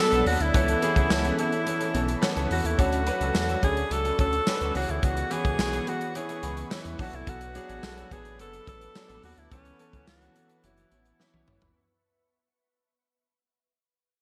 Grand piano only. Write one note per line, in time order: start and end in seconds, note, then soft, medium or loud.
0.00 0.26 F#3 loud
0.00 0.26 B3 medium
0.00 0.27 D4 medium
0.00 0.27 A4 loud
0.00 0.56 B4 medium
0.26 0.47 F#3 medium
0.26 0.47 B3 medium
0.26 0.47 D4 medium
0.26 0.47 A4 medium
0.54 0.75 E3 loud
0.54 0.75 B3 medium
0.54 0.75 C#4 medium
0.54 0.75 A4 loud
0.82 1.03 E3 medium
0.82 1.03 B3 medium
0.82 1.03 C#4 medium
0.82 1.03 G#4 loud
1.10 1.30 E3 medium
1.10 1.31 B3 medium
1.10 1.31 C#4 medium
1.10 1.31 A4 loud
1.38 1.59 E3 medium
1.38 1.59 B3 medium
1.38 1.59 C#4 medium
1.38 1.59 A4 medium
1.66 1.86 E3 medium
1.66 1.87 B3 medium
1.66 1.87 C#4 medium
1.66 1.87 E4 medium
1.94 2.15 E3 medium
1.94 2.15 B3 medium
1.94 2.15 C#4 medium
1.94 2.15 A4 medium
2.22 2.43 E3 loud
2.22 2.43 B3 loud
2.22 2.43 C#4 loud
2.22 2.43 A4 loud
2.50 2.70 E3 medium
2.50 2.71 B3 medium
2.50 2.71 C#4 medium
2.50 2.71 A4 medium
2.78 2.99 F#3 loud
2.78 2.99 C#4 medium
2.78 2.99 D4 medium
2.78 2.99 A4 loud
3.06 3.27 F#3 loud
3.06 3.27 C#4 medium
3.06 3.27 D4 medium
3.06 3.27 B4 loud
3.34 3.55 F#3 medium
3.34 3.55 C#4 medium
3.34 3.55 D4 medium
3.34 3.55 A4 medium
3.62 3.83 F#3 medium
3.62 3.83 C#4 medium
3.62 3.83 D4 medium
3.62 3.84 F#4 medium
3.90 4.11 F#3 medium
3.90 4.11 C#4 medium
3.90 4.11 D4 medium
3.90 4.12 A4 medium
4.18 4.39 F#3 medium
4.18 4.39 C#4 medium
4.18 4.39 D4 medium
4.18 4.40 A4 medium
4.46 4.67 F#3 loud
4.46 4.67 C#4 medium
4.46 4.67 D4 medium
4.46 4.68 B4 loud
4.74 5.19 E3 medium
4.74 5.20 B3 medium
4.74 5.20 C#4 medium
4.74 5.20 G#4 medium
5.30 5.51 E3 loud
5.30 5.51 B3 medium
5.30 5.51 C#4 medium
5.30 5.52 F#4 loud
5.58 5.79 E3 medium
5.58 5.79 B3 medium
5.58 5.79 C#4 medium
5.58 5.80 G#4 medium
5.86 6.07 E3 medium
5.86 6.07 B3 medium
5.86 6.08 C#4 medium
5.86 6.08 G#4 medium
6.15 6.35 E3 medium
6.15 6.35 B3 medium
6.15 6.36 C#4 medium
6.15 6.36 E4 medium
6.42 6.63 E3 medium
6.42 6.63 B3 medium
6.42 6.64 C#4 medium
6.42 6.64 B4 medium
6.70 6.91 E3 loud
6.70 6.91 B3 medium
6.70 6.92 C#4 medium
6.70 6.92 E4 loud
6.98 7.44 F#3 medium
6.98 7.44 B3 medium
6.98 7.44 D4 medium
6.98 7.44 A4 medium
7.55 7.75 F#3 loud
7.55 7.76 B3 medium
7.55 7.76 D4 medium
7.55 7.76 G#4 loud
7.83 8.03 F#3 medium
7.83 8.04 B3 medium
7.83 8.04 D4 medium
7.83 8.04 A4 medium
8.11 8.31 F#3 medium
8.11 8.32 B3 medium
8.11 8.32 D4 medium
8.11 8.32 A4 medium
8.39 8.59 F#3 medium
8.39 8.60 B3 medium
8.39 8.60 D4 medium
8.39 8.60 A4 medium
8.66 8.87 F#3 medium
8.66 8.88 B3 medium
8.66 8.88 D4 medium
8.66 8.88 A4 medium
8.95 9.16 F#3 loud
8.95 9.16 B3 medium
8.95 9.16 D4 medium
8.95 9.16 A4 loud
9.23 9.44 F#3 medium
9.23 9.44 B3 medium
9.23 9.44 D4 medium
9.23 9.44 A4 medium
9.51 9.72 E3 medium
9.51 9.72 B3 medium
9.51 9.72 C#4 medium
9.51 9.72 A4 loud
9.79 10.00 E3 loud
9.79 10.00 B3 medium
9.79 10.00 C#4 medium
9.79 10.00 A4 loud
10.07 10.28 E3 medium
10.07 10.28 B3 medium
10.07 10.28 C#4 medium
10.07 10.28 A4 medium
10.35 10.56 E3 medium
10.35 10.56 B3 medium
10.35 10.56 C#4 medium
10.35 10.56 A4 medium
10.63 10.84 E3 medium
10.63 10.84 B3 medium
10.63 10.84 C#4 medium
10.63 10.84 F#4 medium
10.91 11.12 E3 medium
10.91 11.12 B3 medium
10.91 11.12 C#4 medium
10.91 11.12 F#4 medium
11.19 11.40 E3 medium
11.19 11.40 B3 medium
11.19 11.40 C#4 medium
11.19 11.41 E4 loud
11.47 11.68 E3 medium
11.47 11.68 B3 medium
11.47 11.68 C#4 medium
11.47 11.69 E4 medium